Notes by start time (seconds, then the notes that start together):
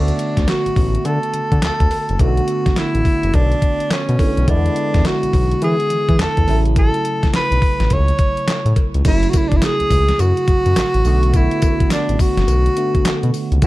Already playing: D2 D3 A3 B3 D4 F#4
0.08 closed hi-hat
0.19 closed hi-hat
0.37 D2, kick, snare, closed hi-hat
0.47 F#4, snare, clap, closed hi-hat, cowbell
0.66 A1, closed hi-hat
0.76 A1, kick, open hi-hat
0.95 closed hi-hat
1.05 D3 A4, closed hi-hat, cowbell
1.23 closed hi-hat
1.34 D3, closed hi-hat
1.52 D3, kick, closed hi-hat
1.62 D2 A4, snare, clap, closed hi-hat, cowbell
1.80 D2, kick, closed hi-hat
1.91 open hi-hat, cowbell
2.09 F#1, closed hi-hat
2.19 B1 D3 A3 B3 E4 F#4, kick, closed hi-hat, cowbell
2.27 F#4
2.37 closed hi-hat
2.48 closed hi-hat
2.66 A1, kick, snare, closed hi-hat
2.76 E4, snare, clap, closed hi-hat, cowbell
2.95 A1, closed hi-hat
3.05 kick, open hi-hat
3.23 F#1, closed hi-hat
3.34 B1 D4, kick, closed hi-hat, cowbell
3.52 closed hi-hat
3.62 kick, closed hi-hat
3.80 closed hi-hat
3.90 C#4, snare, clap, closed hi-hat, cowbell
4.09 B2, closed hi-hat
4.19 D3 A3 B3 E4, kick, open hi-hat, cowbell
4.37 B1, closed hi-hat
4.48 E2 D3 G#3 B3 D4 E4, kick, closed hi-hat, cowbell
4.66 closed hi-hat
4.76 closed hi-hat
4.94 E2, kick, snare, closed hi-hat
5.05 F#4, snare, clap, closed hi-hat, cowbell
5.23 B1, closed hi-hat
5.33 B1, kick, open hi-hat
5.51 closed hi-hat
5.62 E3 G#4, closed hi-hat, cowbell
5.80 closed hi-hat
5.90 E3, closed hi-hat
6.09 E3, kick, closed hi-hat
6.19 E2 A4, snare, clap, closed hi-hat, cowbell
6.37 E2, kick, closed hi-hat
6.47 A1 C#3 F#3 A3 E4, open hi-hat, cowbell
6.65 closed hi-hat
6.76 A4, kick, closed hi-hat, cowbell
6.94 closed hi-hat
7.05 closed hi-hat
7.23 B1, kick, snare, closed hi-hat
7.33 B4, snare, clap, closed hi-hat, cowbell
7.51 B1, closed hi-hat
7.62 kick, open hi-hat
7.80 A1, snare, closed hi-hat
7.90 C#2 C#5, kick, closed hi-hat, cowbell
8.08 closed hi-hat
8.19 kick, closed hi-hat
8.37 closed hi-hat
8.48 snare, clap, closed hi-hat, cowbell
8.65 A2, closed hi-hat
8.76 kick, closed hi-hat, cowbell
8.94 C#2, closed hi-hat
9.05 F#1 C#3 F#3 A3 E4, kick, closed hi-hat, crash, tambourine, cowbell
9.23 closed hi-hat
9.29 F#4
9.33 E4, kick, closed hi-hat, tambourine, cowbell
9.49 F#1 D4, kick, closed hi-hat
9.57 E4
9.62 G#4, snare, clap, closed hi-hat, tambourine, cowbell
9.80 C#2, closed hi-hat
9.91 C#2, kick, open hi-hat, tambourine
10.08 snare, closed hi-hat
10.19 F#2 F#4, closed hi-hat, tambourine, cowbell
10.37 closed hi-hat
10.48 F#2, kick, closed hi-hat
10.66 F#2, closed hi-hat
10.76 A1, snare, clap, closed hi-hat, tambourine, cowbell
10.94 A1, closed hi-hat
11.05 B1 D3 A3 B3 F#4, open hi-hat, tambourine
11.23 closed hi-hat
11.34 E4, kick, closed hi-hat, tambourine, cowbell
11.51 closed hi-hat
11.62 kick, closed hi-hat, tambourine, cowbell
11.80 A1, kick, closed hi-hat
11.90 D4, snare, clap, closed hi-hat, tambourine, cowbell
12.09 A1, closed hi-hat
12.19 F#4, kick, open hi-hat, tambourine
12.37 F#1, snare, closed hi-hat
12.48 B1, closed hi-hat, tambourine, cowbell
12.66 closed hi-hat
12.77 D3 A3 B3 F#4, closed hi-hat
12.95 kick, closed hi-hat
13.05 snare, clap, closed hi-hat, tambourine, cowbell
13.23 B2, closed hi-hat
13.34 open hi-hat, tambourine
13.52 C#2, closed hi-hat
13.62 F#1 E3 A3 C#4 E4, kick, closed hi-hat, tambourine, cowbell